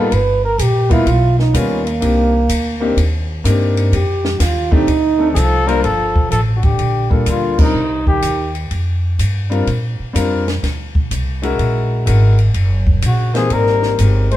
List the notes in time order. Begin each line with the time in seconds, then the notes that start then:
Already playing: D#4 F4 A4
0.11 G1 B4, kick, ride
0.45 A#4
0.58 A#1 G4, kick, hi-hat pedal, ride
0.89 G3 A#3 B3 D#4 E4 F4, kick, ride
1.06 B1 F4, kick, ride
1.39 D#4, snare
1.53 D#2 G3 A#3 B3 C#4 D#4 F4, kick, hi-hat pedal, ride
1.86 A#3, ride
2.01 C2 A#3 C4 D4 D#4 G4, kick, ride
2.49 D2, kick, hi-hat pedal, ride
2.80 A#3 C4 D4 D#4 G4
2.96 D#2, kick, ride
3.44 G2 A#3 C4 D4 D#4 G4, kick, hi-hat pedal, ride
3.77 ride
3.92 F2 G4, kick, ride
4.25 snare
4.40 D#2 F4, kick, snare, hi-hat pedal, ride
4.71 A3 C4 D4 D#4 G4, kick
4.87 D2, kick, ride
5.18 A3 C4 D4 D#4 A4
5.32 C2 D#3 F3 G#4
5.36 A4, kick, hi-hat pedal, ride
5.66 G3 A#3 D4 F4 A#4 C5, ride
5.83 G1 F3 A4, kick, ride
6.16 kick
6.30 A1 F3 A4, kick, hi-hat pedal, ride
6.55 D3 F#4
6.62 D3 G4, kick, ride
6.78 A#1, kick, ride
7.10 G3 A#3 D4 F4 A4, kick
7.26 D2 D3 F4, kick, hi-hat pedal, ride
7.58 C3 G3 C4 D4 D#4 A#4, kick, crash
7.73 C2
8.06 D#3 G4, kick
8.22 D#2, kick, hi-hat pedal, ride
8.55 ride
8.71 F2, kick, ride
9.19 G2, kick, hi-hat pedal, ride
9.50 G3 C4 D4 F4 A#4, ride
9.67 A#2, kick, ride
9.99 muted upright bass stroke
10.13 F2 G3 C4 D4 F4 A#4, kick, hi-hat pedal, ride
10.48 snare, ride
10.63 D2, kick, snare, ride
10.95 kick
11.11 C2, kick, hi-hat pedal, ride
11.42 G#3 C#4 E4 F#4 A#4, ride
11.58 A#1, kick, ride
12.05 G#1 G#3 C#4 E4 F#4 A#4, kick, hi-hat pedal, ride
12.39 ride
12.54 F#1, kick, ride
12.87 kick
13.02 A#1 C#3 F#4, kick, hi-hat pedal, ride
13.34 E3 A#3 C4 D#4 G4 G#4 C5, snare, ride
13.50 G#1 G3 A#4, kick, ride
13.66 snare
13.82 snare
13.98 G1 G#3 C4 D#4 G4 A#4, kick, hi-hat pedal, ride
14.31 G#3 C5, ride